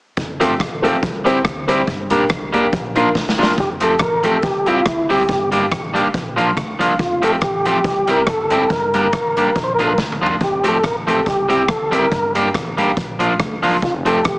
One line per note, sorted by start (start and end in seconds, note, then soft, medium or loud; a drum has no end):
0.17 0.37 F1 loud
0.17 kick loud
0.17 closed hi-hat medium
0.40 0.57 G1 medium
0.40 0.52 F3 medium
0.40 0.53 A3 medium
0.40 0.52 C4 medium
0.40 0.53 C4 medium
0.40 0.52 F4 medium
0.40 0.52 G4 medium
0.40 0.53 G4 medium
0.40 0.52 A4 loud
0.40 closed hi-hat loud
0.60 0.96 A1 medium
0.60 0.65 G4 soft
0.60 0.65 A4 soft
0.60 kick loud
0.60 cross-stick loud
0.60 closed hi-hat medium
0.82 0.95 F3 medium
0.82 0.95 A3 medium
0.82 0.94 C4 medium
0.82 0.96 C4 medium
0.82 0.94 F4 medium
0.82 0.94 G4 medium
0.82 0.96 G4 medium
0.82 0.95 A4 loud
0.82 closed hi-hat medium
1.03 1.22 C2 medium
1.03 kick loud
1.03 closed hi-hat medium
1.25 1.42 D2 medium
1.25 1.37 G3 medium
1.25 1.37 C4 loud
1.25 1.38 C4 medium
1.25 1.37 E4 medium
1.25 1.38 E4 medium
1.25 1.37 G4 medium
1.25 1.38 G4 loud
1.25 1.37 C5 loud
1.25 closed hi-hat medium
1.44 1.81 D2 medium
1.44 muted clean electric guitar stroke soft
1.44 kick loud
1.44 cross-stick loud
1.44 closed hi-hat medium
1.67 1.80 G3 medium
1.67 1.79 C4 medium
1.67 1.80 C4 medium
1.67 1.79 E4 medium
1.67 1.81 E4 medium
1.67 1.80 G4 medium
1.67 1.81 G4 medium
1.67 1.80 C5 medium
1.67 closed hi-hat loud
1.87 2.07 G1 loud
1.87 kick medium
1.87 closed hi-hat medium
2.10 2.27 A#1 medium
2.10 2.23 G3 medium
2.10 2.22 A#3 medium
2.10 2.23 A#3 medium
2.10 2.22 D4 medium
2.10 2.23 D4 medium
2.10 2.22 G4 medium
2.10 2.24 G4 medium
2.10 2.22 A#4 loud
2.10 closed hi-hat loud
2.29 2.66 C2 medium
2.29 kick loud
2.29 cross-stick loud
2.29 closed hi-hat medium
2.53 2.65 G3 medium
2.53 2.65 A#3 medium
2.53 2.66 A#3 medium
2.53 2.65 D4 medium
2.53 2.66 D4 medium
2.53 2.65 G4 medium
2.53 2.66 G4 medium
2.53 2.65 A#4 loud
2.53 closed hi-hat medium
2.73 3.09 A#1 loud
2.73 kick loud
2.73 closed hi-hat medium
2.96 3.08 F3 medium
2.96 3.07 A#3 medium
2.96 3.08 A#3 medium
2.96 3.07 D4 medium
2.96 3.08 D4 medium
2.96 3.08 F4 medium
2.96 3.09 F4 medium
2.96 3.08 A#4 loud
2.96 closed hi-hat medium
3.15 3.51 C2 medium
3.15 kick loud
3.15 snare medium
3.29 snare medium
3.38 3.51 F3 medium
3.38 3.49 A#3 medium
3.38 3.51 A#3 medium
3.38 3.50 D4 medium
3.38 3.51 D4 loud
3.38 3.50 F4 medium
3.38 3.51 F4 loud
3.38 3.50 A#4 medium
3.43 snare loud
3.58 3.94 F1 loud
3.58 3.70 G4 loud
3.58 kick loud
3.58 closed hi-hat medium
3.80 3.93 F3 medium
3.80 3.93 A3 medium
3.80 3.94 C4 medium
3.80 3.94 G4 medium
3.80 4.02 A4 loud
3.80 closed hi-hat loud
3.99 4.37 A1 medium
3.99 4.26 A#4 loud
3.99 kick loud
3.99 cross-stick loud
3.99 closed hi-hat medium
4.23 4.36 F3 medium
4.23 4.36 A3 medium
4.23 4.36 C4 medium
4.23 4.36 G4 medium
4.23 4.43 A4 loud
4.23 closed hi-hat medium
4.42 4.79 C2 medium
4.42 4.68 G4 medium
4.42 kick loud
4.42 closed hi-hat medium
4.66 4.79 G3 medium
4.66 4.79 C4 medium
4.66 4.79 E4 medium
4.66 4.87 F4 medium
4.66 4.79 G4 medium
4.66 closed hi-hat medium
4.86 5.06 D2 medium
4.86 5.11 E4 medium
4.86 muted clean electric guitar stroke soft
4.86 kick loud
4.86 cross-stick loud
4.86 closed hi-hat medium
5.09 5.26 D2 medium
5.09 5.22 G3 medium
5.09 5.22 C4 medium
5.09 5.22 E4 loud
5.09 5.22 G4 loud
5.09 5.50 G4 medium
5.09 open hi-hat medium
5.29 5.65 G1 loud
5.29 kick loud
5.29 closed hi-hat medium
5.52 5.64 G3 medium
5.52 5.64 A#3 medium
5.52 5.65 D4 medium
5.52 5.65 G4 medium
5.52 closed hi-hat loud
5.71 6.08 A1 medium
5.71 kick loud
5.71 cross-stick loud
5.71 closed hi-hat medium
5.94 6.06 G3 medium
5.94 6.07 A#3 medium
5.94 6.07 D4 medium
5.94 6.07 G4 medium
5.94 closed hi-hat medium
6.14 6.57 A#1 medium
6.14 kick loud
6.14 closed hi-hat medium
6.36 6.49 F3 medium
6.36 6.49 A#3 medium
6.36 6.50 D4 medium
6.36 6.50 F4 medium
6.36 closed hi-hat medium
6.57 6.77 D2 medium
6.57 kick loud
6.57 cross-stick loud
6.57 closed hi-hat medium
6.79 6.96 C2 medium
6.79 6.92 F3 medium
6.79 6.92 A#3 medium
6.79 6.92 D4 medium
6.79 6.93 F4 medium
6.79 closed hi-hat loud
6.99 7.36 F1 loud
6.99 7.24 F4 medium
6.99 kick loud
6.99 closed hi-hat medium
7.22 7.34 F3 medium
7.22 7.35 A3 medium
7.22 7.35 C4 medium
7.22 7.35 G4 medium
7.22 7.32 A4 loud
7.22 closed hi-hat loud
7.41 7.78 A1 loud
7.41 7.66 G4 medium
7.41 kick loud
7.41 cross-stick loud
7.41 closed hi-hat medium
7.65 7.78 F3 loud
7.65 7.78 A3 medium
7.65 7.78 C4 medium
7.65 7.78 G4 medium
7.65 8.10 G4 loud
7.65 closed hi-hat medium
7.84 8.21 C2 loud
7.84 kick loud
7.84 closed hi-hat medium
8.07 8.20 G3 medium
8.07 8.20 C4 medium
8.07 8.21 E4 medium
8.07 8.21 G4 loud
8.07 8.29 A#4 loud
8.07 closed hi-hat medium
8.27 8.63 G1 medium
8.27 8.72 A4 loud
8.27 muted clean electric guitar stroke soft
8.27 kick loud
8.27 cross-stick loud
8.27 closed hi-hat medium
8.50 8.63 G3 medium
8.50 8.63 C4 loud
8.50 8.63 E4 loud
8.50 8.64 G4 loud
8.50 closed hi-hat loud
8.70 9.06 G1 loud
8.70 9.59 A#4 medium
8.70 kick loud
8.70 closed hi-hat medium
8.94 9.06 G3 medium
8.94 9.06 A#3 medium
8.94 9.06 D4 medium
8.94 9.06 G4 medium
8.94 closed hi-hat medium
9.13 kick loud
9.13 cross-stick loud
9.13 closed hi-hat medium
9.37 9.49 G3 medium
9.37 9.49 A#3 medium
9.37 9.49 D4 medium
9.37 9.49 G4 medium
9.37 closed hi-hat medium
9.56 9.98 A#1 loud
9.56 kick loud
9.56 closed hi-hat medium
9.64 9.73 C5 medium
9.74 9.83 A#4 medium
9.79 9.91 F3 medium
9.79 9.91 A#3 medium
9.79 9.92 D4 medium
9.79 9.92 F4 medium
9.79 closed hi-hat medium
9.84 9.91 A4 medium
9.93 10.00 A#4 medium
9.98 10.18 D2 loud
9.98 kick loud
9.98 snare medium
10.12 mid tom medium
10.21 10.38 C2 medium
10.21 10.34 F3 medium
10.21 10.34 A#3 medium
10.21 10.34 D4 loud
10.21 10.34 F4 loud
10.26 floor tom loud
10.40 10.77 F1 loud
10.40 10.66 G4 loud
10.40 kick loud
10.40 closed hi-hat medium
10.64 10.76 F3 medium
10.64 10.76 A3 medium
10.64 10.77 C4 medium
10.64 10.77 G4 medium
10.64 closed hi-hat loud
10.68 10.84 A4 loud
10.83 11.20 A1 medium
10.83 10.96 A#4 loud
10.83 kick loud
10.83 cross-stick loud
10.83 closed hi-hat medium
11.07 11.19 F3 medium
11.07 11.19 A3 medium
11.07 11.19 C4 medium
11.07 11.20 G4 medium
11.07 11.28 A4 loud
11.07 closed hi-hat medium
11.26 11.63 C2 medium
11.26 11.49 G4 medium
11.26 kick loud
11.26 closed hi-hat medium
11.49 11.61 G3 medium
11.49 11.62 C4 medium
11.49 11.62 E4 medium
11.49 11.62 G4 medium
11.49 11.70 G4 medium
11.49 closed hi-hat medium
11.68 11.89 D2 medium
11.68 11.94 A4 loud
11.68 muted clean electric guitar stroke soft
11.68 kick loud
11.68 cross-stick loud
11.68 closed hi-hat medium
11.91 12.09 D2 medium
11.91 12.04 G3 medium
11.91 12.04 C4 loud
11.91 12.05 E4 loud
11.91 12.05 G4 loud
11.91 12.33 A#4 medium
11.91 closed hi-hat loud
12.12 12.48 G1 loud
12.12 kick loud
12.12 closed hi-hat medium
12.35 12.47 G3 medium
12.35 12.48 A#3 medium
12.35 12.48 D4 medium
12.35 12.48 G4 medium
12.35 closed hi-hat loud
12.54 12.91 A1 medium
12.54 kick loud
12.54 cross-stick loud
12.54 closed hi-hat medium
12.77 12.90 G3 medium
12.77 12.90 A#3 medium
12.77 12.90 D4 medium
12.77 12.91 G4 medium
12.77 closed hi-hat medium
12.97 13.40 A#1 medium
12.97 kick loud
12.97 closed hi-hat medium
13.19 13.32 F3 medium
13.19 13.32 A#3 medium
13.19 13.33 D4 medium
13.19 13.33 F4 medium
13.19 closed hi-hat medium
13.40 13.60 D2 loud
13.40 kick loud
13.40 cross-stick loud
13.40 closed hi-hat medium
13.63 13.79 C2 medium
13.63 13.75 F3 medium
13.63 13.75 A#3 medium
13.63 13.76 D4 medium
13.63 13.76 F4 loud
13.63 open hi-hat medium
13.82 14.19 F1 loud
13.82 13.94 F4 medium
13.82 kick loud
13.82 closed hi-hat medium
14.05 14.18 F3 medium
14.05 14.18 A3 medium
14.05 14.18 C4 medium
14.05 14.19 G4 medium
14.05 14.25 A4 medium
14.05 closed hi-hat loud
14.24 14.39 A1 loud
14.24 14.39 G4 medium
14.24 kick loud
14.24 cross-stick loud
14.24 closed hi-hat medium